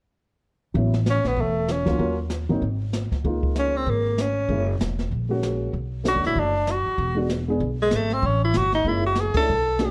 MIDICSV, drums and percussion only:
0, 0, Header, 1, 2, 480
1, 0, Start_track
1, 0, Key_signature, 3, "major"
1, 0, Tempo, 311850
1, 1150, Time_signature, 4, 2, 24, 8
1, 15250, End_track
2, 0, Start_track
2, 0, Title_t, "Drums"
2, 1147, Note_on_c, 9, 25, 45
2, 1147, Note_on_c, 9, 36, 32
2, 1300, Note_off_c, 9, 36, 0
2, 1442, Note_on_c, 9, 38, 45
2, 1596, Note_off_c, 9, 38, 0
2, 1631, Note_on_c, 9, 44, 48
2, 1634, Note_on_c, 9, 38, 55
2, 1785, Note_off_c, 9, 44, 0
2, 1788, Note_off_c, 9, 38, 0
2, 1916, Note_on_c, 9, 38, 34
2, 2070, Note_off_c, 9, 38, 0
2, 2103, Note_on_c, 9, 36, 24
2, 2105, Note_off_c, 9, 25, 0
2, 2105, Note_on_c, 9, 25, 33
2, 2257, Note_off_c, 9, 36, 0
2, 2590, Note_on_c, 9, 44, 54
2, 2593, Note_on_c, 9, 38, 55
2, 2744, Note_off_c, 9, 44, 0
2, 2747, Note_off_c, 9, 38, 0
2, 2869, Note_on_c, 9, 38, 36
2, 2872, Note_on_c, 9, 36, 46
2, 3023, Note_off_c, 9, 38, 0
2, 3026, Note_off_c, 9, 36, 0
2, 3065, Note_off_c, 9, 25, 0
2, 3065, Note_on_c, 9, 25, 44
2, 3065, Note_on_c, 9, 36, 29
2, 3219, Note_off_c, 9, 36, 0
2, 3535, Note_on_c, 9, 44, 57
2, 3538, Note_on_c, 9, 38, 53
2, 3689, Note_off_c, 9, 44, 0
2, 3692, Note_off_c, 9, 38, 0
2, 4028, Note_on_c, 9, 36, 25
2, 4036, Note_off_c, 9, 25, 0
2, 4036, Note_on_c, 9, 25, 40
2, 4182, Note_off_c, 9, 36, 0
2, 4510, Note_on_c, 9, 44, 57
2, 4513, Note_on_c, 9, 38, 59
2, 4664, Note_off_c, 9, 44, 0
2, 4667, Note_off_c, 9, 38, 0
2, 4799, Note_on_c, 9, 36, 42
2, 4805, Note_on_c, 9, 38, 35
2, 4953, Note_off_c, 9, 36, 0
2, 4959, Note_off_c, 9, 38, 0
2, 4992, Note_on_c, 9, 36, 31
2, 5007, Note_off_c, 9, 25, 0
2, 5007, Note_on_c, 9, 25, 40
2, 5146, Note_off_c, 9, 36, 0
2, 5282, Note_on_c, 9, 36, 48
2, 5436, Note_off_c, 9, 36, 0
2, 5471, Note_on_c, 9, 44, 48
2, 5474, Note_on_c, 9, 38, 54
2, 5625, Note_off_c, 9, 44, 0
2, 5628, Note_off_c, 9, 38, 0
2, 5947, Note_on_c, 9, 36, 27
2, 5950, Note_off_c, 9, 25, 0
2, 5950, Note_on_c, 9, 25, 43
2, 6100, Note_off_c, 9, 36, 0
2, 6432, Note_on_c, 9, 44, 59
2, 6435, Note_on_c, 9, 38, 60
2, 6586, Note_off_c, 9, 44, 0
2, 6589, Note_off_c, 9, 38, 0
2, 6907, Note_on_c, 9, 36, 29
2, 6921, Note_off_c, 9, 25, 0
2, 6921, Note_on_c, 9, 25, 43
2, 7061, Note_off_c, 9, 36, 0
2, 7396, Note_on_c, 9, 44, 53
2, 7399, Note_on_c, 9, 38, 56
2, 7550, Note_off_c, 9, 44, 0
2, 7553, Note_off_c, 9, 38, 0
2, 7678, Note_on_c, 9, 38, 35
2, 7832, Note_off_c, 9, 38, 0
2, 7868, Note_on_c, 9, 36, 30
2, 7878, Note_off_c, 9, 25, 0
2, 7878, Note_on_c, 9, 25, 38
2, 8022, Note_off_c, 9, 36, 0
2, 8355, Note_on_c, 9, 44, 61
2, 8358, Note_on_c, 9, 38, 53
2, 8509, Note_off_c, 9, 44, 0
2, 8512, Note_off_c, 9, 38, 0
2, 8824, Note_on_c, 9, 36, 30
2, 8834, Note_off_c, 9, 25, 0
2, 8834, Note_on_c, 9, 25, 44
2, 8978, Note_off_c, 9, 36, 0
2, 9312, Note_on_c, 9, 44, 60
2, 9316, Note_on_c, 9, 38, 56
2, 9466, Note_off_c, 9, 44, 0
2, 9469, Note_off_c, 9, 38, 0
2, 9600, Note_on_c, 9, 38, 35
2, 9754, Note_off_c, 9, 38, 0
2, 9785, Note_on_c, 9, 36, 28
2, 9795, Note_off_c, 9, 25, 0
2, 9795, Note_on_c, 9, 25, 43
2, 9939, Note_off_c, 9, 36, 0
2, 10267, Note_on_c, 9, 44, 53
2, 10270, Note_on_c, 9, 38, 57
2, 10421, Note_off_c, 9, 44, 0
2, 10424, Note_off_c, 9, 38, 0
2, 10743, Note_on_c, 9, 36, 30
2, 10757, Note_off_c, 9, 25, 0
2, 10757, Note_on_c, 9, 25, 51
2, 10897, Note_off_c, 9, 36, 0
2, 11226, Note_on_c, 9, 44, 51
2, 11229, Note_on_c, 9, 38, 52
2, 11380, Note_off_c, 9, 44, 0
2, 11383, Note_off_c, 9, 38, 0
2, 11697, Note_on_c, 9, 36, 28
2, 11705, Note_off_c, 9, 25, 0
2, 11705, Note_on_c, 9, 25, 34
2, 11851, Note_off_c, 9, 36, 0
2, 12173, Note_on_c, 9, 44, 62
2, 12176, Note_on_c, 9, 38, 56
2, 12327, Note_off_c, 9, 44, 0
2, 12330, Note_off_c, 9, 38, 0
2, 12466, Note_on_c, 9, 38, 35
2, 12620, Note_off_c, 9, 38, 0
2, 12656, Note_on_c, 9, 36, 29
2, 12657, Note_off_c, 9, 25, 0
2, 12657, Note_on_c, 9, 25, 45
2, 12810, Note_off_c, 9, 36, 0
2, 13139, Note_on_c, 9, 44, 57
2, 13142, Note_on_c, 9, 38, 58
2, 13293, Note_off_c, 9, 44, 0
2, 13296, Note_off_c, 9, 38, 0
2, 13425, Note_on_c, 9, 38, 38
2, 13579, Note_off_c, 9, 38, 0
2, 13613, Note_off_c, 9, 25, 0
2, 13613, Note_on_c, 9, 25, 38
2, 13613, Note_on_c, 9, 36, 28
2, 13767, Note_off_c, 9, 36, 0
2, 14088, Note_on_c, 9, 44, 53
2, 14091, Note_on_c, 9, 38, 59
2, 14242, Note_off_c, 9, 44, 0
2, 14245, Note_off_c, 9, 38, 0
2, 14374, Note_on_c, 9, 51, 65
2, 14385, Note_on_c, 9, 36, 71
2, 14528, Note_off_c, 9, 51, 0
2, 14539, Note_off_c, 9, 36, 0
2, 14582, Note_off_c, 9, 25, 0
2, 14582, Note_on_c, 9, 25, 41
2, 15065, Note_on_c, 9, 44, 55
2, 15068, Note_on_c, 9, 38, 59
2, 15219, Note_off_c, 9, 44, 0
2, 15222, Note_off_c, 9, 38, 0
2, 15250, Note_off_c, 9, 25, 0
2, 15250, End_track
0, 0, End_of_file